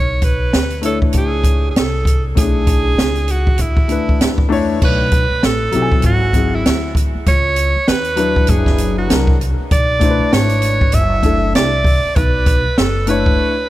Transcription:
Already playing: B1 C#5
0.22 B4, kick, closed hi-hat
0.53 D2, snare, closed hi-hat
0.70 closed hi-hat
0.81 A3 D4 E4 A4, closed hi-hat
0.85 C#5
1.02 kick
1.13 C#2, kick, closed hi-hat
1.17 G#4
1.44 kick, closed hi-hat
1.71 G#4
1.76 C2 A4, snare, closed hi-hat
2.05 kick, closed hi-hat
2.35 B1 A3 C#4 E4 G#4, kick, closed hi-hat
2.43 D4
2.67 kick, closed hi-hat
2.98 C#2, snare, closed hi-hat
3.15 closed hi-hat
3.28 F#4, closed hi-hat
3.47 kick
3.58 D2 E4, kick, closed hi-hat
3.77 kick
3.88 A3 D4 E4, closed hi-hat
3.92 B4
4.09 kick
4.21 E2, snare, closed hi-hat
4.38 kick
4.49 A3 D4 E4 C#5, open hi-hat
4.79 B1 A3 D4 E4 C#5, kick, crash
4.85 B4
5.12 kick, closed hi-hat
5.31 muted upright bass stroke
5.43 A1 A4, snare, closed hi-hat
5.71 B1 F#3 C4 E4, closed hi-hat
5.76 G4
5.82 G#5
5.92 kick
6.02 G#1 F#4, kick, closed hi-hat
6.33 F#3 C4 E4, kick, closed hi-hat
6.37 G#4
6.55 E4
6.65 D2, snare, closed hi-hat
6.95 kick, closed hi-hat
7.14 muted upright bass stroke
7.26 C#2 C#5, kick, closed hi-hat
7.56 closed hi-hat
7.75 muted upright bass stroke
7.88 D#2 B4, snare, closed hi-hat
8.04 closed hi-hat
8.16 F#3 D4 E4 B4, closed hi-hat
8.36 kick
8.47 F#1 G#4, kick, closed hi-hat
8.66 kick, snare
8.78 closed hi-hat
8.98 F#4
9.08 C2 F#3 D4 E4, snare, closed hi-hat
9.12 A#4
9.27 kick
9.41 closed hi-hat
9.59 muted upright bass stroke
9.71 B1 D5, kick, closed hi-hat
9.99 A3 D4 E4, kick, closed hi-hat
10.03 C5
10.10 B4
10.20 muted upright bass stroke
10.33 G#1 C#5, snare, closed hi-hat
10.49 closed hi-hat
10.62 closed hi-hat
10.81 kick
10.92 F#1 E5, kick, closed hi-hat
11.22 A3 D4 E4 A4, kick, closed hi-hat
11.55 C2 D5, snare, closed hi-hat
11.84 kick, open hi-hat
12.04 muted upright bass stroke
12.16 B1 B4, kick, closed hi-hat
12.46 kick, closed hi-hat
12.65 muted upright bass stroke
12.78 F#1 A4, snare, closed hi-hat
13.06 A3 D4 E4 B4 C#5, closed hi-hat
13.26 kick

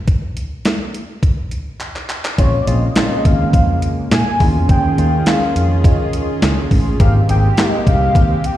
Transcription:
0.08 kick, closed hi-hat
0.37 closed hi-hat
0.65 snare, clap, closed hi-hat
0.94 closed hi-hat
1.23 kick, closed hi-hat
1.51 closed hi-hat
1.80 clap, closed hi-hat
1.96 clap
2.09 clap, closed hi-hat
2.25 clap
2.38 A#1 C#3 G#3 A#3 C4 C#4 F4 C#5, kick, closed hi-hat
2.61 D5
2.67 A#1 G#3 C4 C#4 F4 D#5, closed hi-hat
2.96 G#3 C4 C#4 F4, snare, clap, closed hi-hat
3.25 D#2 F5, kick, closed hi-hat
3.53 F2, kick, closed hi-hat
3.82 closed hi-hat
4.11 A#2 G#5, snare, clap, closed hi-hat
4.40 D#2 D#3 G#3 A#3 C#4 E4 F4 G#4, kick, open hi-hat
4.47 F4
4.55 E2
4.69 D#2 G5, kick, closed hi-hat
4.98 D#2 G#3 A#3 C#4 F4, closed hi-hat
5.26 G#3 A#3 C#4 F4 F5, snare, clap, closed hi-hat
5.56 F2, closed hi-hat
5.84 D#2 D#5, kick, closed hi-hat
6.13 closed hi-hat
6.42 C#2, snare, clap, closed hi-hat
6.71 A1, kick, open hi-hat
7.00 G#1 G#3 A#3 C4 D#4 G4 F5, kick, closed hi-hat
7.29 G#1 A#3 C4 D#4 G#4 G5, closed hi-hat
7.57 A#3 C4 D#4 G4 D#5, snare, clap, closed hi-hat
7.87 C2 F5, kick, closed hi-hat
8.15 D#2, kick, closed hi-hat
8.44 G5, closed hi-hat

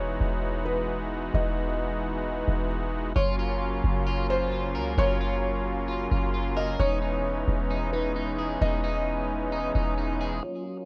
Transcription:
Already playing: E1 E3 G#3 B3 D#4 F#4 C#5
0.21 E1
0.65 B4
1.34 E1 D#5
2.48 E1
3.16 F#1 C#3 F#3 A#3 C#4 F4 C#5
3.39 F4
3.84 F#1
4.07 F4
4.30 F4 C5
4.52 F4
4.75 C#2 A#4
4.98 F#1 F4 C#5
5.21 F4
5.88 F4
6.11 F#1 F4
6.34 F4
6.57 A#4 D#5
6.79 E1 E3 G#3 B3 D#4 C#5
7.02 D#4
7.48 E1
7.70 D#4
7.93 D#4 B4
8.16 D#4
8.39 G#4
8.61 E1 D#4 D#5
8.84 D#4
9.52 D#4
9.75 E1 D#4
9.98 D#4
10.21 G#4
10.43 F#3 A#3 C#4 F4 A#4 C#5
10.66 F4

